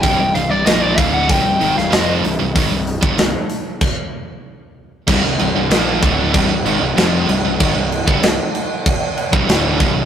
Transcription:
<<
  \new Staff \with { instrumentName = "Lead electric guitar" } { \time 4/4 \key c \minor \tempo 4 = 95 g''8 f''16 d''16 ees''16 d''16 f''16 fis''16 g''8. f''16 ees''8 r8 | r1 | r1 | r1 | }
  \new Staff \with { instrumentName = "Distorted electric guitar" } { \clef bass \time 4/4 \key c \minor <c, g,>16 <c, g,>16 <c, g,>16 <c, g,>16 <bes, f bes>8 <d, a, d>8 <c, g,>16 <c, g,>16 <aes, ees>16 <c, g,>16 <f, c f>8 <c, g,>16 <c, g,>16 | <aes, ees>16 <c, g,>8 <g, d>16 <c, g,>16 r2 r8. | <c, g,>16 <c, g,>16 <c, g,>16 <c, g,>16 <bes, f bes>8 <d, a, d>8 <c, g,>16 <c, g,>16 <aes, ees>16 <c, g,>16 <f, c f>8 <c, g,>16 <c, g,>16 | <aes, ees>16 <c, g,>8 <g, d>16 <c, g,>16 r4. <c, g,>16 <d, a, d>8 <c, g,>16 <c, g,>16 | }
  \new Staff \with { instrumentName = "Distorted electric guitar" } { \clef bass \time 4/4 \key c \minor <c, g,>16 <c, g,>16 <c, g,>16 <c, g,>16 <bes, f bes>8 <d, a, d>8 <c, g,>16 <c, g,>16 <aes, ees>16 <c, g,>16 <f, c f>8 <c, g,>16 <c, g,>16 | <aes, ees>16 <c, g,>8 <g, d>16 <c, g,>16 r2 r8. | <c, g,>16 <c, g,>16 <c, g,>16 <c, g,>16 <bes, f bes>8 <d, a, d>8 <c, g,>16 <c, g,>16 <aes, ees>16 <c, g,>16 <f, c f>8 <c, g,>16 <c, g,>16 | <aes, ees>16 <c, g,>8 <g, d>16 <c, g,>16 r4. <c, g,>16 <d, a, d>8 <c, g,>16 <c, g,>16 | }
  \new Staff \with { instrumentName = "Distorted electric guitar" } { \clef bass \time 4/4 \key c \minor r1 | r1 | <c, g,>16 <c, g,>16 <c, g,>16 <c, g,>16 <bes, f bes>8 <d, a, d>8 <c, g,>16 <c, g,>16 <aes, ees>16 <c, g,>16 <f, c f>8 <c, g,>16 <c, g,>16 | <aes, ees>16 <c, g,>8 <g, d>16 <c, g,>16 r4. <c, g,>16 <d, a, d>8 <c, g,>16 <c, g,>16 | }
  \new Staff \with { instrumentName = "Picked electric bass" } { \clef bass \time 4/4 \key c \minor c,,16 c,,16 c,,16 c,,16 bes,,8 d,,8 c,,16 c,,16 aes,,16 c,,16 f,,8 c,,16 c,,16 | aes,,16 c,,8 g,,16 c,,16 r2 r8. | c,,16 c,,16 c,,16 c,,16 bes,,8 d,,8 c,,16 c,,16 aes,,16 c,,16 f,,8 c,,16 c,,16 | aes,,16 c,,8 g,,16 c,,16 r4. c,,16 d,,8 c,,16 c,,16 | }
  \new DrumStaff \with { instrumentName = "Drums" } \drummode { \time 4/4 <hho bd>8 hho8 <hho sn>8 <hho bd>8 <hho bd>8 hho16 sn16 <hho sn>8 hho8 | <hho bd>8 hho16 bd16 <hho sn>8 hho8 <cymc bd>4 r4 | <cymc bd>8 cymc8 <cymc sn>8 <cymc bd>8 <cymc bd>8 cymc8 <cymc sn>8 cymc8 | <cymc bd>8 cymc16 bd16 <cymc sn>8 cymc8 <cymc bd>8 cymc16 bd16 <cymc sn>8 <cymc bd>8 | }
>>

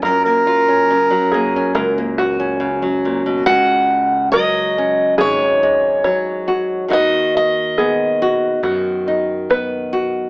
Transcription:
<<
  \new Staff \with { instrumentName = "Steel-string acoustic guitar" } { \time 4/4 \key des \mixolydian \tempo 4 = 70 r1 | ges''4 ees''4 des''2 | ees''8 ees''4. r2 | }
  \new Staff \with { instrumentName = "Harmonica" } { \time 4/4 \key des \mixolydian bes'16 bes'2 r4. r16 | r1 | r1 | }
  \new Staff \with { instrumentName = "Five-string banjo" } { \time 4/4 \key des \mixolydian bes'4 r8 aes'8 bes'8 ges'4 r8 | ges'4 bes'4 aes'4 des''4 | ges'4 aes'4 ges'4 ces''4 | }
  \new Staff \with { instrumentName = "Nylon-string guitar" } { \time 4/4 \key des \mixolydian << { r16 bes16 f'16 des'8. bes16 des'8 bes16 ges'16 des'4~ des'16 | aes4. des'4 aes4 ges'8 | ees'4. ges'4 ees'4 ges'8 | } \\ { ges,4 des16 ges8. ges,4 des16 ges16 bes,16 ces16 | des4 ges4 aes,4 ges4 | ees4 ces'4 ees4 ces'4 | } >> }
  \new Staff \with { instrumentName = "Upright bass" } { \clef bass \time 4/4 \key des \mixolydian ges,2 des,2 | des,2 aes,,2 | ees,2 ges,2 | }
>>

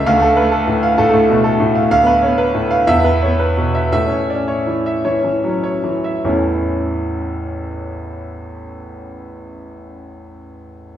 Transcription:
<<
  \new Staff \with { instrumentName = "Grand piano" } { \time 4/4 \key a \major \tempo 4 = 105 << { f''8 r2. r8 | f''8 r4. e''8 r4. | e''8 r2. r8 | <a,, e, e a cis' e'>1~ |
<a,, e, e a cis' e'>1 | } \\ { \tuplet 3/2 { r8 a'8 b'8 a'8 a,8 f''8 a'8 a,8 b,8 a'8 a,8 f''8 } | \tuplet 3/2 { r8 b'8 cis''8 b'8 a,8 f''8 r8 b'8 cis''8 b'8 b,8 e''8 } | \tuplet 3/2 { r8 cis''8 d''8 cis''8 e8 e''8 cis''8 e8 fis8 cis''8 e8 e''8 } | r1 |
r1 | } >> }
  \new Staff \with { instrumentName = "Grand piano" } { \time 4/4 \key a \major d,16 a8 a8 r8. a,16 a8 a8 r8. | d,16 b8 b8 r8. e,16 b8 b8 r8. | a,16 cis'8 cis'8 r8. e16 cis'8 cis'8 r8. | r1 |
r1 | }
>>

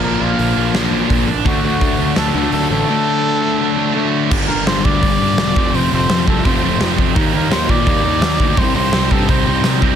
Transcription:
<<
  \new Staff \with { instrumentName = "Muted trumpet" } { \time 4/4 \key g \minor \tempo 4 = 169 bes'8 f''4. r2 | fis'8 fis'4. a'4 a'8 a'8~ | a'2.~ a'8 r8 | r8 bes'8 c''8 d''2~ d''8 |
c''8 c''4 a'8 c''4. r8 | r8 bes'8 c''8 d''2~ d''8 | c''8 c''4 a'8 c''4. r8 | }
  \new Staff \with { instrumentName = "Distorted electric guitar" } { \time 4/4 \key g \minor <bes, f bes>2.~ <bes, f bes>8 r8 | <d a d'>1 | <d a d'>1 | r1 |
r1 | r1 | r1 | }
  \new Staff \with { instrumentName = "Distorted electric guitar" } { \clef bass \time 4/4 \key g \minor <bes, d f bes d'>4. <bes, d f bes d'>2 r8 | <d fis a d'>2 <d fis a d'>2 | <d fis a d'>2 <d fis a d'>2 | <g, d g bes d'>8 <g, d g bes d'>8 <g, d g bes d'>8 <g, d g bes d'>8 <g, d g bes d'>8 <g, d g bes d'>8 <g, d g bes d'>8 <f, c f a c'>8 |
<f, c f a c'>8 <f, c f a c'>8 <f, c f a c'>8 <f, c f a c'>8 <f, c f a c'>8 <f, c f a c'>8 <f, c f a c'>8 <f, c f a c'>8 | <ees g bes ees'>8 <ees g bes ees'>8 <ees g bes ees'>8 <ees g bes ees'>8 <ees g bes ees'>8 <ees g bes ees'>8 <ees g bes ees'>8 <ees g bes ees'>8 | <c g c' ees'>8 <c g c' ees'>8 <c g c' ees'>8 <c g c' ees'>8 <c g c' ees'>8 <c g c' ees'>8 <c g c' ees'>8 <c g c' ees'>8 | }
  \new Staff \with { instrumentName = "Distorted electric guitar" } { \clef bass \time 4/4 \key g \minor <bes, f bes>2 <bes, f bes>8 <bes, f bes>4 r8 | <d a d'>2~ <d a d'>8 <d a d'>8 <d a d'>4 | <d a d'>2~ <d a d'>8 <d a d'>8 <d a d'>4 | <g, d g>8 <g, d g>8 <g, d g>8 <g, d g>8 <g, d g>8 <g, d g>8 <g, d g>8 <f, c f>8 |
<f, c f>8 <f, c f>8 <f, c f>8 <f, c f>8 <f, c f>8 <f, c f>8 <f, c f>8 <f, c f>8 | <ees bes ees'>8 <ees bes ees'>8 <ees bes ees'>8 <ees bes ees'>8 <ees bes ees'>8 <ees bes ees'>8 <ees bes ees'>8 <ees bes ees'>8 | <c g c'>8 <c g c'>8 <c g c'>8 <c g c'>8 <c g c'>8 <c g c'>8 <c g c'>8 <c g c'>8 | }
  \new Staff \with { instrumentName = "Picked electric bass" } { \clef bass \time 4/4 \key g \minor bes,,8 bes,,8 bes,,8 bes,,8 bes,,8 bes,,8 bes,,8 bes,,8 | d,8 d,8 d,8 d,8 d,8 d,8 d,8 a,,8 | r1 | g,,8 g,,8 g,,8 d,8 g,,8 g,,8 e,,8 f,,8 |
f,,8 f,,8 f,,8 c,8 f,,8 f,,8 f,,8 f,8 | ees,8 ees,8 ees,8 bes,8 ees,8 ees,8 ees,8 d,8 | c,8 c,8 c,8 g,8 c,8 c,8 c,8 c,8 | }
  \new DrumStaff \with { instrumentName = "Drums" } \drummode { \time 4/4 r4 hho4 <hho sn>4 <hho bd>4 | <hho bd>4 <hho bd>4 <hho sn>4 hho4 | r4 r4 r4 r4 | <cymc bd>4 <hho sn>8 bd8 <hho bd>4 <hho sn>8 bd8 |
hho4 <hho sn>8 bd8 <hho bd>4 <hho sn>8 bd8 | <hho bd>4 <hho sn>8 bd8 <hho bd>4 <hho sn>8 bd8 | <hho bd>4 <hho sn>8 bd8 <hho bd>4 <hho sn>8 bd8 | }
>>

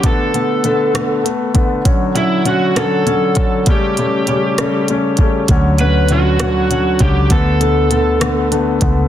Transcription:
<<
  \new Staff \with { instrumentName = "Lead electric guitar" } { \time 6/8 \key d \major \tempo 4. = 66 a'2 r4 | r8 e'8 fis'8 a'4. | g'2 r4 | r8 b'8 fis'4. g'8 |
a'2 r4 | }
  \new Staff \with { instrumentName = "Grand piano" } { \time 6/8 \key d \major <d a b>8 <d a b>8 <d a b>8 <d a b>8 <a b>8 <d a b>8 | <d fis cis'>8 <d fis cis'>8 <d fis cis'>8 <d fis cis'>8 <d fis cis'>8 <d fis cis'>8 | <cis g a cis'>8 <cis g a cis'>8 <cis g a cis'>8 <cis g a cis'>8 <cis g a cis'>8 <cis g a cis'>8 | <d fis cis'>8 <d fis cis'>8 <d fis cis'>8 <d fis cis'>8 <d fis cis'>8 <d fis cis'>8 |
<d a b>8 <d a b>8 <d a b>8 <d a b>8 <d a b>8 <d a b>8 | }
  \new Staff \with { instrumentName = "Fingered electric bass" } { \clef bass \time 6/8 \key d \major r2. | r2. | r2. | d,2~ d,8 cis,8 |
d,2~ d,8 cis,8 | }
  \new DrumStaff \with { instrumentName = "Drums" } \drummode { \time 6/8 <hh bd>8 hh8 hh8 <hh ss>8 hh8 <hh bd>8 | <hh bd>8 hh8 hh8 <hh ss>8 hh8 <hh bd>8 | <hh bd>8 hh8 hh8 <hh ss>8 hh8 <hh bd>8 | <hh bd>8 hh8 hh8 <hh ss>8 hh8 <hh bd>8 |
<hh bd>8 hh8 hh8 <hh ss>8 hh8 <hh bd>8 | }
>>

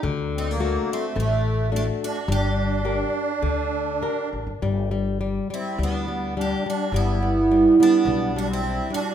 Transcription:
<<
  \new Staff \with { instrumentName = "Twelve-string acoustic guitar" } { \time 4/4 \key g \minor \tempo 4 = 106 r8 ees'16 d'8. c'8 d'4 d'8 fis'8 | g'2.~ g'8 r8 | \key g \major r4. e'8 d'4 g'8 fis'8 | e'4. d'4 fis'16 e'8. fis'8 | }
  \new Staff \with { instrumentName = "Accordion" } { \time 4/4 \key g \minor r8 c'16 bes8. a8 a4 a8 d'8 | d'2.~ d'8 r8 | \key g \major r4. c'8 b4 d'8 d'8 | b4. b4 d'16 c'8. d'8 | }
  \new Staff \with { instrumentName = "Nylon-string guitar" } { \clef bass \time 4/4 \key g \minor d4 <a d' fis'>4 a4 <a d' fis'>4 | g4 <d' g' bes'>4 d4 <d' g' bes'>4 | \key g \major g8 g8 g8 g8 g8 g8 g8 g8 | g8 g8 g8 g8 g8 g8 g8 g8 | }
  \new Staff \with { instrumentName = "Upright bass" } { \clef bass \time 4/4 \key g \minor d,2 a,,2 | g,,2 d,4. a,,16 g,,16 | \key g \major g,,2 d,2 | g,,2 b,,2 | }
>>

